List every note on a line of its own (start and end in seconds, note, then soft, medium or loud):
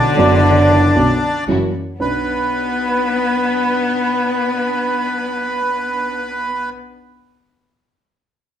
0.00 0.13 B1 medium
0.00 0.14 B1 medium
0.00 0.13 B2 medium
0.00 0.13 D3 medium
0.00 1.44 D3 loud
0.00 0.13 B3 soft
0.00 0.13 C#4 soft
0.00 0.13 D4 medium
0.00 1.44 D4 medium
0.00 0.14 F#4 medium
0.00 1.44 D5 loud
0.15 0.92 F#1 medium
0.15 0.92 F#1 loud
0.15 0.91 F#2 medium
0.15 0.90 D3 medium
0.15 0.91 B3 medium
0.15 0.92 D4 medium
0.19 0.92 F#4 medium
0.95 1.17 B1 medium
0.95 1.18 B1 medium
0.95 1.18 B2 medium
0.95 1.17 D3 medium
0.95 1.17 B3 medium
0.95 1.18 B3 soft
0.95 1.17 C#4 soft
0.95 1.18 C#4 medium
0.95 1.18 D4 medium
0.95 1.18 F#4 medium
1.47 1.70 F#1 medium
1.47 1.70 F#2 medium
1.47 1.70 E3 medium
1.47 1.70 F#3 medium
1.47 1.70 A#3 medium
1.47 1.70 A#3 soft
1.47 1.70 C#4 medium
1.47 1.70 E4 soft
1.47 1.70 F#4 medium
2.00 6.68 B1 medium
2.00 2.22 B1 medium
2.00 6.68 B3 medium
2.00 6.68 C#4 soft
2.00 6.68 D4 soft
2.00 6.68 D4 medium
2.00 6.68 B4 medium
2.00 6.70 B4 medium